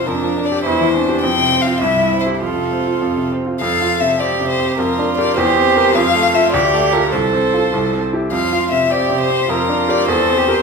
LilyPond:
<<
  \new Staff \with { instrumentName = "Violin" } { \time 2/4 \key f \major \tempo 4 = 102 \tuplet 3/2 { bes'4 d''8 } c''4 | \tuplet 3/2 { g''4 f''8 e''4 c''8 } | a'4. r8 | \tuplet 3/2 { f''4 e''8 } d''8 c''8 |
\tuplet 3/2 { bes'4 d''8 } c''4 | \tuplet 3/2 { f''4 e''8 d''4 bes'8 } | c''4. r8 | \tuplet 3/2 { f''4 e''8 } d''8 c''8 |
\tuplet 3/2 { bes'4 d''8 } c''4 | }
  \new Staff \with { instrumentName = "Cello" } { \time 2/4 \key f \major d'4 e'8 d'8 | c'4 e'4 | f'4. r8 | a'4 g'4 |
f'4 g'4 | f'4 g'4 | a'4. r8 | f'4 g'4 |
f'4 a'8 g'8 | }
  \new Staff \with { instrumentName = "Grand piano" } { \time 2/4 \key f \major f,16 f16 d'16 g'16 e,16 e16 c'16 g'16 | f,16 c16 c'16 f'16 c,16 g,16 c'16 g'16 | f,16 c16 c'16 f'16 f,16 c16 c'16 f'16 | \tuplet 3/2 { f,8 f'8 c8 c'8 c8 c'8 } |
\tuplet 3/2 { f,8 d'8 <g' bes'>8 e,8 c'8 <g' bes'>8 } | \tuplet 3/2 { f,8 a8 <f' a'>8 d,8 a8 <f' a'>8 } | \tuplet 3/2 { c,8 c'8 <f' a'>8 c,8 c'8 <e' g'>8 } | \tuplet 3/2 { f,8 f'8 c8 c'8 c8 c'8 } |
\tuplet 3/2 { f,8 d'8 <g' bes'>8 e,8 c'8 <g' bes'>8 } | }
>>